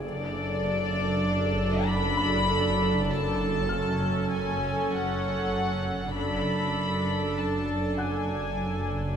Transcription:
<<
  \new Staff \with { instrumentName = "Grand piano" } { \time 5/4 \key d \lydian \tempo 4 = 98 <gis' gis''>2~ <gis' gis''>8 r4 b''4.~ | b''4 eis'''2. r4 | r2. <fis'' fis'''>2 | }
  \new Staff \with { instrumentName = "Violin section" } { \time 5/4 \key d \lydian d''2. b''2 | a''2 gis''4 fis''2 | b''2 a''4 gis''2 | }
  \new Staff \with { instrumentName = "Viola section" } { \time 5/4 \key d \lydian << { a'1~ a'4~ | a'1~ a'4 | a'1~ a'4 | } \\ { d'1~ d'4~ | d'4 cis'1 | d'1~ d'4 | } >> }
  \new Staff \with { instrumentName = "Cello section" } { \clef bass \time 5/4 \key d \lydian fis,1~ fis,4~ | fis,1~ fis,4 | fis,1~ fis,4 | }
  \new Staff \with { instrumentName = "Double bass section" } { \clef bass \time 5/4 \key d \lydian fis,,1~ fis,,4~ | fis,,1~ fis,,4 | fis,,1~ fis,,4 | }
  \new Staff \with { instrumentName = "Synth drone" } { \clef bass \time 5/4 \key d \lydian fis,,1~ fis,,4~ | fis,,1~ fis,,4 | fis,,1~ fis,,4 | }
>>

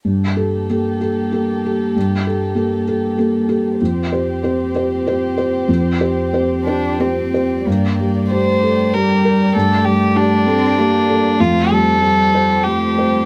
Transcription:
<<
  \new Staff \with { instrumentName = "Violin" } { \time 3/4 \key g \minor \tempo 4 = 96 r2. | r2. | r2. | r2. |
r4 c''4 bes'4 | a'8 g'8 d'2 | f'8 a'4. g'4 | }
  \new Staff \with { instrumentName = "Felt piano" } { \time 3/4 \key g \minor g,8 <g' a'>8 <bes g' a'>8 <g' a'>8 <bes g' a'>8 <g' a'>8 | g,8 <g' a'>8 <bes g' a'>8 <g' a'>8 <bes g' a'>8 <g' a'>8 | f,8 <g' c''>8 <c' g' c''>8 <g' c''>8 <c' g' c''>8 <g' c''>8 | f,8 <g' c''>8 <c' g' c''>8 <g' c''>8 <c' g' c''>8 <g' c''>8 |
g,8 g8 g'8 a'8 g'8 bes'8 | g,8 g8 g'8 a'8 g'8 a'8 | f,8 g8 g'8 c''8 g'8 c''8 | }
  \new Staff \with { instrumentName = "String section" } { \time 3/4 \key g \minor <bes g' a'>2.~ | <bes g' a'>2. | <c' g' c''>2.~ | <c' g' c''>2. |
<g g' d''>2.~ | <g g' d''>2. | <g g' c''>2. | }
  \new Staff \with { instrumentName = "Cello" } { \time 3/4 \key g \minor r2. | r2. | r2. | r4. d'8 c'4 |
bes4 a4 g4 | a4. c'8 bes4 | a4 g4 a4 | }
>>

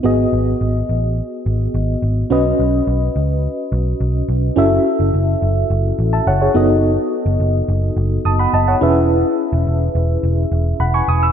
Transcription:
<<
  \new Staff \with { instrumentName = "FM electric piano" } { \time 4/4 \key fis \dorian \tempo 4 = 106 << { r1 | r1 | r2 r8. <e'' a''>16 <cis'' fis''>16 <gis' cis''>8 r16 | r2 r8 <a'' dis'''>16 <fis'' b''>16 <dis'' a''>16 <cis'' fis''>8 r16 |
r2. <fis'' b''>16 <gis'' cis'''>16 <gis'' dis'''>16 <b'' e'''>16 | } \\ { <b fis' gis' dis''>1 | <cis' fis' b' dis''>1 | <cis' e' fis' a' e''>2.~ <cis' e' fis' a' e''>8 <b dis' fis' a' dis''>8~ | <b dis' fis' a' dis''>2.~ <b dis' fis' a' dis''>8 <cis' e' gis' b' e''>8~ |
<cis' e' gis' b' e''>2.~ <cis' e' gis' b' e''>8 r8 | } >> }
  \new Staff \with { instrumentName = "Picked electric bass" } { \clef bass \time 4/4 \key fis \dorian gis,,8 gis,,8 gis,,8 a,,8. r16 gis,,8 gis,,8 gis,,8 | b,,8 b,,8 b,,8 cis,8. r16 b,,8 b,,8 b,,8 | fis,,8 r16 fis,,16 fis,,8 fis,,8 fis,,8 a,,8 fis,,8 fis,,8~ | fis,,8 r16 fis,,16 fis,,8 fis,,8 fis,,8 fis,,8 fis,,8 e,,8~ |
e,,8 r16 e,,16 e,,8 e,,8 e,,8 e,,8 e,,8 e,,8 | }
>>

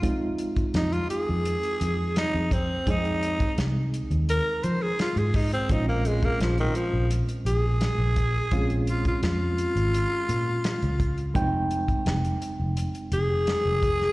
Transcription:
<<
  \new Staff \with { instrumentName = "Tenor saxophone" } { \time 4/4 \key f \minor \tempo 4 = 85 f'8 r8 ees'16 f'16 aes'4. ees'8 c'8 | ees'4 r4 bes'8 c''16 aes'16 f'16 aes'16 ees'16 c'16 | ees'16 bes16 aes16 bes16 f16 ees16 f8 r8 aes'4.~ | aes'8 f'16 f'16 f'2. |
r2 r8 aes'4. | }
  \new Staff \with { instrumentName = "Reed electric piano" } { \time 4/4 \key f \minor <aes c' ees' f'>1 | <aes c' ees' aes'>1 | <aes c' des' f'>1 | <aes c' des' f'>1 |
<aes c' ees' g''>1 | }
  \new Staff \with { instrumentName = "Fingered electric bass" } { \clef bass \time 4/4 \key f \minor f,4 f,8 r16 f,8 r16 f,8. f,8. | f,4 c,8. ees,8 r16 f8 r16 aes,8. | bes,,4 bes,,8 r16 bes,,8 r16 bes,,8. bes,,8. | bes,,4 f,8. aes,,8 r16 bes,8 r16 des,8. |
f,,4 f,,8 r16 f,,8 r16 f,,8. f,,8. | }
  \new DrumStaff \with { instrumentName = "Drums" } \drummode { \time 4/4 <hh bd>8 hh16 <hh bd>16 <hh sn>16 hh16 hh8 hh16 hh16 hh8 <hh sn>8 <hh bd>8 | <hh bd>16 hh16 hh16 <hh bd>16 <hh sn>8 hh16 hh16 hh8 hh8 <hh sn>16 hh16 <hho bd>16 hh16 | <hh bd>8 hh16 <hh bd>16 <hh sn>16 hh16 hh8 hh16 hh16 hh8 <hh sn>8 <hh bd>8 | <hh bd>16 hh16 hh16 <hh bd>16 <hh sn>8 hh16 hh16 hh8 hh8 <hh sn>16 hh16 <hh bd>16 hh16 |
<hh bd>8 hh16 <hh bd>16 <hh sn>16 hh16 hh8 hh16 hh16 hh8 <hh sn>8 <hh bd>16 sn16 | }
>>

